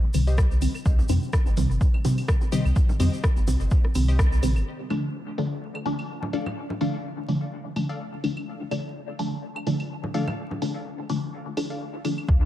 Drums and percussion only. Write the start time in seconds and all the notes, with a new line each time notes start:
0.14 open hi-hat, claves, shaker
0.27 open hi-hat, shaker
0.38 kick, cross-stick, shaker
0.51 shaker
0.61 open hi-hat, claves, shaker
0.75 claves, shaker
0.85 kick, shaker
0.99 low conga, shaker
1.09 open hi-hat, claves, shaker
1.22 shaker
1.33 kick, cross-stick, shaker
1.46 shaker
1.57 open hi-hat, low conga, shaker
1.71 shaker
1.81 kick, shaker
1.94 claves
2.05 open hi-hat, low conga, shaker
2.18 open hi-hat, claves, shaker
2.28 kick, cross-stick, shaker
2.41 shaker
2.52 open hi-hat, shaker
2.65 claves, shaker
2.76 kick, shaker
2.89 low conga, shaker
3.00 open hi-hat, claves, shaker
3.13 shaker
3.23 kick, cross-stick, shaker
3.37 shaker
3.47 open hi-hat, low conga, shaker
3.60 shaker
3.71 kick, shaker
3.85 cross-stick
3.95 open hi-hat, claves, shaker
4.08 open hi-hat, shaker
4.19 kick, cross-stick, shaker
4.32 shaker
4.43 open hi-hat, claves, shaker
4.56 claves, shaker
4.90 open hi-hat, claves
5.38 open hi-hat
5.75 claves
5.86 open hi-hat
5.99 open hi-hat, claves
6.23 low conga
6.33 open hi-hat
6.46 low conga, claves
6.70 low conga
6.81 open hi-hat
7.29 open hi-hat
7.76 open hi-hat, claves
7.89 open hi-hat
8.24 open hi-hat, claves
8.37 claves
8.71 open hi-hat, claves
9.19 open hi-hat
9.56 claves
9.67 open hi-hat
9.80 open hi-hat, claves
10.04 low conga
10.14 open hi-hat
10.28 low conga, claves
10.51 low conga
10.62 open hi-hat
11.09 open hi-hat
11.57 open hi-hat, claves
11.70 open hi-hat
12.05 open hi-hat, claves
12.18 claves
12.29 kick